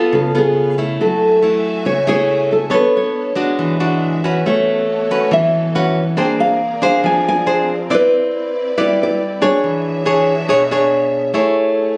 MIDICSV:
0, 0, Header, 1, 4, 480
1, 0, Start_track
1, 0, Key_signature, 3, "major"
1, 0, Tempo, 431655
1, 1105, Time_signature, 4, 2, 24, 8
1, 13313, End_track
2, 0, Start_track
2, 0, Title_t, "Nylon-string guitar"
2, 0, Program_c, 0, 24
2, 0, Note_on_c, 0, 71, 88
2, 160, Note_off_c, 0, 71, 0
2, 165, Note_on_c, 0, 69, 73
2, 402, Note_off_c, 0, 69, 0
2, 426, Note_on_c, 0, 68, 71
2, 853, Note_off_c, 0, 68, 0
2, 1124, Note_on_c, 0, 69, 89
2, 2064, Note_off_c, 0, 69, 0
2, 2069, Note_on_c, 0, 73, 91
2, 2315, Note_off_c, 0, 73, 0
2, 2326, Note_on_c, 0, 73, 97
2, 2763, Note_off_c, 0, 73, 0
2, 2805, Note_on_c, 0, 69, 74
2, 3042, Note_off_c, 0, 69, 0
2, 3049, Note_on_c, 0, 71, 87
2, 3284, Note_off_c, 0, 71, 0
2, 3299, Note_on_c, 0, 73, 85
2, 4679, Note_off_c, 0, 73, 0
2, 4973, Note_on_c, 0, 73, 77
2, 5924, Note_off_c, 0, 73, 0
2, 5929, Note_on_c, 0, 76, 81
2, 6399, Note_off_c, 0, 76, 0
2, 6403, Note_on_c, 0, 78, 78
2, 6872, Note_off_c, 0, 78, 0
2, 6876, Note_on_c, 0, 79, 85
2, 6940, Note_off_c, 0, 79, 0
2, 7120, Note_on_c, 0, 77, 86
2, 7602, Note_off_c, 0, 77, 0
2, 7615, Note_on_c, 0, 77, 80
2, 7826, Note_off_c, 0, 77, 0
2, 7847, Note_on_c, 0, 80, 95
2, 8062, Note_off_c, 0, 80, 0
2, 8100, Note_on_c, 0, 80, 90
2, 8532, Note_off_c, 0, 80, 0
2, 8834, Note_on_c, 0, 71, 84
2, 9796, Note_on_c, 0, 74, 85
2, 9799, Note_off_c, 0, 71, 0
2, 10018, Note_off_c, 0, 74, 0
2, 10041, Note_on_c, 0, 74, 91
2, 10495, Note_off_c, 0, 74, 0
2, 10499, Note_on_c, 0, 73, 78
2, 12118, Note_off_c, 0, 73, 0
2, 13313, End_track
3, 0, Start_track
3, 0, Title_t, "String section"
3, 0, Program_c, 1, 48
3, 0, Note_on_c, 1, 59, 61
3, 0, Note_on_c, 1, 68, 51
3, 0, Note_on_c, 1, 78, 62
3, 119, Note_off_c, 1, 59, 0
3, 140, Note_off_c, 1, 68, 0
3, 143, Note_off_c, 1, 78, 0
3, 144, Note_on_c, 1, 71, 54
3, 149, Note_on_c, 1, 61, 59
3, 151, Note_on_c, 1, 77, 61
3, 159, Note_on_c, 1, 57, 56
3, 1095, Note_off_c, 1, 71, 0
3, 1098, Note_off_c, 1, 61, 0
3, 1099, Note_off_c, 1, 77, 0
3, 1111, Note_on_c, 1, 80, 55
3, 1112, Note_on_c, 1, 66, 55
3, 1117, Note_on_c, 1, 76, 73
3, 3000, Note_on_c, 1, 62, 57
3, 3004, Note_off_c, 1, 57, 0
3, 3007, Note_on_c, 1, 59, 52
3, 3007, Note_on_c, 1, 69, 52
3, 3010, Note_off_c, 1, 66, 0
3, 3010, Note_off_c, 1, 80, 0
3, 3011, Note_on_c, 1, 73, 67
3, 3012, Note_off_c, 1, 76, 0
3, 3967, Note_off_c, 1, 59, 0
3, 3967, Note_off_c, 1, 69, 0
3, 3969, Note_off_c, 1, 73, 0
3, 3979, Note_on_c, 1, 76, 56
3, 3986, Note_on_c, 1, 66, 50
3, 3993, Note_on_c, 1, 68, 47
3, 4914, Note_off_c, 1, 62, 0
3, 4934, Note_off_c, 1, 76, 0
3, 4941, Note_off_c, 1, 68, 0
3, 4953, Note_on_c, 1, 59, 65
3, 4958, Note_on_c, 1, 73, 71
3, 4961, Note_on_c, 1, 69, 60
3, 6839, Note_off_c, 1, 66, 0
3, 6852, Note_off_c, 1, 59, 0
3, 6854, Note_off_c, 1, 73, 0
3, 6855, Note_off_c, 1, 69, 0
3, 6875, Note_on_c, 1, 60, 60
3, 6875, Note_on_c, 1, 70, 52
3, 6877, Note_on_c, 1, 74, 71
3, 6880, Note_on_c, 1, 68, 58
3, 8773, Note_off_c, 1, 70, 0
3, 8774, Note_off_c, 1, 74, 0
3, 8775, Note_off_c, 1, 68, 0
3, 8793, Note_on_c, 1, 74, 72
3, 8800, Note_on_c, 1, 71, 57
3, 8803, Note_on_c, 1, 64, 57
3, 10673, Note_off_c, 1, 60, 0
3, 10691, Note_off_c, 1, 74, 0
3, 10694, Note_off_c, 1, 71, 0
3, 10696, Note_off_c, 1, 64, 0
3, 10705, Note_on_c, 1, 68, 57
3, 10707, Note_on_c, 1, 62, 67
3, 10707, Note_on_c, 1, 66, 59
3, 10709, Note_on_c, 1, 76, 74
3, 10714, Note_on_c, 1, 73, 54
3, 12604, Note_off_c, 1, 73, 0
3, 12606, Note_off_c, 1, 68, 0
3, 12607, Note_off_c, 1, 62, 0
3, 12607, Note_off_c, 1, 66, 0
3, 12608, Note_off_c, 1, 76, 0
3, 12617, Note_on_c, 1, 73, 65
3, 12620, Note_on_c, 1, 57, 65
3, 12625, Note_on_c, 1, 68, 56
3, 13313, Note_off_c, 1, 57, 0
3, 13313, Note_off_c, 1, 68, 0
3, 13313, Note_off_c, 1, 73, 0
3, 13313, End_track
4, 0, Start_track
4, 0, Title_t, "Nylon-string guitar"
4, 0, Program_c, 2, 24
4, 0, Note_on_c, 2, 59, 57
4, 0, Note_on_c, 2, 65, 64
4, 0, Note_on_c, 2, 69, 60
4, 141, Note_on_c, 2, 49, 72
4, 342, Note_off_c, 2, 59, 0
4, 344, Note_off_c, 2, 65, 0
4, 348, Note_off_c, 2, 69, 0
4, 387, Note_on_c, 2, 59, 58
4, 394, Note_on_c, 2, 65, 53
4, 828, Note_off_c, 2, 59, 0
4, 831, Note_off_c, 2, 65, 0
4, 868, Note_on_c, 2, 57, 46
4, 876, Note_on_c, 2, 64, 53
4, 1079, Note_off_c, 2, 49, 0
4, 1120, Note_on_c, 2, 54, 61
4, 1548, Note_off_c, 2, 57, 0
4, 1553, Note_off_c, 2, 64, 0
4, 1585, Note_on_c, 2, 57, 46
4, 1598, Note_on_c, 2, 64, 49
4, 2049, Note_off_c, 2, 54, 0
4, 2059, Note_on_c, 2, 49, 66
4, 2063, Note_off_c, 2, 57, 0
4, 2069, Note_off_c, 2, 64, 0
4, 2304, Note_on_c, 2, 57, 57
4, 2305, Note_on_c, 2, 64, 48
4, 2317, Note_on_c, 2, 68, 58
4, 2987, Note_off_c, 2, 57, 0
4, 2987, Note_off_c, 2, 64, 0
4, 2993, Note_off_c, 2, 68, 0
4, 2999, Note_off_c, 2, 49, 0
4, 3002, Note_on_c, 2, 59, 57
4, 3008, Note_on_c, 2, 62, 54
4, 3014, Note_on_c, 2, 69, 47
4, 3014, Note_on_c, 2, 73, 58
4, 3698, Note_off_c, 2, 62, 0
4, 3698, Note_off_c, 2, 69, 0
4, 3702, Note_off_c, 2, 73, 0
4, 3726, Note_off_c, 2, 59, 0
4, 3731, Note_on_c, 2, 56, 59
4, 3738, Note_on_c, 2, 62, 57
4, 3745, Note_on_c, 2, 66, 67
4, 3990, Note_on_c, 2, 52, 67
4, 4180, Note_off_c, 2, 56, 0
4, 4184, Note_off_c, 2, 62, 0
4, 4187, Note_off_c, 2, 66, 0
4, 4227, Note_on_c, 2, 56, 52
4, 4230, Note_on_c, 2, 62, 55
4, 4232, Note_on_c, 2, 66, 51
4, 4669, Note_off_c, 2, 56, 0
4, 4669, Note_off_c, 2, 62, 0
4, 4671, Note_off_c, 2, 66, 0
4, 4717, Note_on_c, 2, 61, 48
4, 4719, Note_on_c, 2, 66, 51
4, 4731, Note_on_c, 2, 71, 51
4, 4924, Note_off_c, 2, 52, 0
4, 4962, Note_on_c, 2, 57, 59
4, 5393, Note_off_c, 2, 66, 0
4, 5394, Note_off_c, 2, 61, 0
4, 5401, Note_off_c, 2, 71, 0
4, 5683, Note_on_c, 2, 61, 55
4, 5683, Note_on_c, 2, 66, 55
4, 5689, Note_on_c, 2, 71, 60
4, 5891, Note_off_c, 2, 57, 0
4, 5907, Note_on_c, 2, 52, 66
4, 6356, Note_off_c, 2, 66, 0
4, 6357, Note_off_c, 2, 61, 0
4, 6360, Note_off_c, 2, 71, 0
4, 6396, Note_on_c, 2, 61, 53
4, 6401, Note_on_c, 2, 66, 56
4, 6402, Note_on_c, 2, 71, 65
4, 6701, Note_off_c, 2, 61, 0
4, 6702, Note_off_c, 2, 66, 0
4, 6704, Note_off_c, 2, 71, 0
4, 6844, Note_off_c, 2, 52, 0
4, 6861, Note_on_c, 2, 58, 58
4, 6862, Note_on_c, 2, 62, 54
4, 6867, Note_on_c, 2, 68, 48
4, 6871, Note_on_c, 2, 72, 57
4, 7341, Note_off_c, 2, 62, 0
4, 7341, Note_off_c, 2, 68, 0
4, 7347, Note_off_c, 2, 72, 0
4, 7582, Note_on_c, 2, 62, 65
4, 7590, Note_on_c, 2, 68, 54
4, 7595, Note_on_c, 2, 72, 71
4, 7802, Note_off_c, 2, 58, 0
4, 7825, Note_on_c, 2, 53, 64
4, 8267, Note_off_c, 2, 62, 0
4, 8271, Note_off_c, 2, 68, 0
4, 8273, Note_off_c, 2, 72, 0
4, 8301, Note_on_c, 2, 62, 47
4, 8306, Note_on_c, 2, 68, 53
4, 8308, Note_on_c, 2, 72, 57
4, 8614, Note_off_c, 2, 62, 0
4, 8615, Note_off_c, 2, 68, 0
4, 8617, Note_off_c, 2, 72, 0
4, 8763, Note_off_c, 2, 53, 0
4, 8787, Note_on_c, 2, 60, 55
4, 8790, Note_on_c, 2, 64, 50
4, 8792, Note_on_c, 2, 71, 53
4, 8797, Note_on_c, 2, 74, 57
4, 9434, Note_off_c, 2, 64, 0
4, 9434, Note_off_c, 2, 71, 0
4, 9438, Note_off_c, 2, 74, 0
4, 9724, Note_off_c, 2, 60, 0
4, 9759, Note_on_c, 2, 55, 72
4, 9761, Note_on_c, 2, 64, 57
4, 9762, Note_on_c, 2, 71, 55
4, 9764, Note_on_c, 2, 74, 61
4, 10230, Note_off_c, 2, 71, 0
4, 10231, Note_off_c, 2, 64, 0
4, 10233, Note_off_c, 2, 74, 0
4, 10472, Note_on_c, 2, 62, 59
4, 10477, Note_on_c, 2, 68, 60
4, 10483, Note_on_c, 2, 73, 56
4, 10690, Note_off_c, 2, 55, 0
4, 10717, Note_on_c, 2, 52, 58
4, 11151, Note_off_c, 2, 62, 0
4, 11154, Note_off_c, 2, 68, 0
4, 11156, Note_off_c, 2, 73, 0
4, 11182, Note_on_c, 2, 62, 50
4, 11188, Note_on_c, 2, 68, 51
4, 11196, Note_on_c, 2, 73, 64
4, 11494, Note_off_c, 2, 62, 0
4, 11498, Note_off_c, 2, 68, 0
4, 11499, Note_off_c, 2, 73, 0
4, 11648, Note_off_c, 2, 52, 0
4, 11659, Note_on_c, 2, 47, 66
4, 11665, Note_on_c, 2, 62, 57
4, 11666, Note_on_c, 2, 68, 60
4, 11676, Note_on_c, 2, 73, 61
4, 11806, Note_off_c, 2, 62, 0
4, 11808, Note_off_c, 2, 68, 0
4, 11813, Note_off_c, 2, 73, 0
4, 11914, Note_on_c, 2, 62, 54
4, 11918, Note_on_c, 2, 68, 54
4, 11927, Note_on_c, 2, 73, 65
4, 12592, Note_off_c, 2, 62, 0
4, 12593, Note_off_c, 2, 68, 0
4, 12598, Note_off_c, 2, 73, 0
4, 12600, Note_off_c, 2, 47, 0
4, 12608, Note_on_c, 2, 57, 52
4, 12613, Note_on_c, 2, 64, 48
4, 12619, Note_on_c, 2, 68, 46
4, 12622, Note_on_c, 2, 73, 43
4, 13265, Note_off_c, 2, 64, 0
4, 13267, Note_off_c, 2, 68, 0
4, 13269, Note_off_c, 2, 73, 0
4, 13313, Note_off_c, 2, 57, 0
4, 13313, End_track
0, 0, End_of_file